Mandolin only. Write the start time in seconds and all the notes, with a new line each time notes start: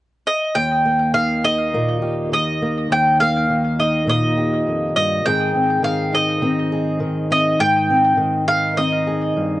0.27 D#5
0.55 G5
1.14 F5
1.45 D#5
2.33 D#5
2.92 G5
3.20 F5
3.79 D#5
4.09 D#5
4.96 D#5
5.26 G5
5.84 F5
6.15 D#5
7.32 D#5
7.60 G5
8.48 F5
8.77 D#5